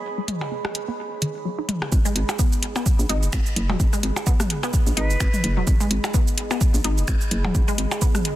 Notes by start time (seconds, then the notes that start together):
Already playing: B3 G#4 C#5 D#5 B5
0.18 G#3
0.28 closed hi-hat, mid tom
0.41 percussion blips
0.51 B3
0.65 cross-stick, percussion blips
0.75 closed hi-hat
0.88 B3
1.22 D#3, closed hi-hat
1.45 F#3
1.58 D#4
1.69 G#3, closed hi-hat, mid tom
1.82 cross-stick, percussion blips
1.92 G#1, kick, shaker
2.05 G#3, shaker
2.16 G#1, closed hi-hat
2.29 percussion blips, shaker
2.39 B3, kick, shaker
2.52 shaker
2.63 closed hi-hat
2.76 B3, percussion blips, shaker
2.86 kick, shaker
2.99 A#1, shaker
3.09 G#1 D#4, closed hi-hat
3.23 F#1, shaker
3.33 G#1, finger snap, kick, shaker
3.46 shaker
3.56 F#1, closed hi-hat
3.70 D#1 F#3, mid tom, percussion blips
3.80 G#1, kick, shaker
3.93 G#3, shaker
4.03 G#1, closed hi-hat
4.16 percussion blips, shaker
4.27 B3, kick, shaker
4.40 cross-stick, mid tom, shaker
4.50 closed hi-hat
4.63 B3, percussion blips, shaker
4.73 kick, shaker
4.87 A#1, shaker
4.97 G#1 D#4 B4, closed hi-hat
5.10 F#1, shaker
5.20 G#1, finger snap, kick, shaker
5.34 mid tom, shaker
5.44 F#1, closed hi-hat
5.57 D#1 F#3
5.67 G#1, kick, shaker
5.80 G#3, shaker
5.91 G#1, closed hi-hat
6.04 percussion blips, shaker
6.14 B3, kick, shaker
6.27 shaker
6.38 closed hi-hat
6.51 B3, percussion blips, shaker
6.61 kick, shaker
6.74 A#1, shaker
6.84 G#1 D#4, closed hi-hat
6.98 F#1, shaker
7.08 G#1, finger snap, kick, shaker
7.21 shaker
7.31 F#1, closed hi-hat
7.45 D#1 F#3, mid tom, percussion blips
7.55 G#1, kick, shaker
7.68 G#3, shaker
7.78 G#1, closed hi-hat
7.91 percussion blips, shaker
8.02 B3, kick, shaker
8.15 cross-stick, mid tom, shaker
8.25 closed hi-hat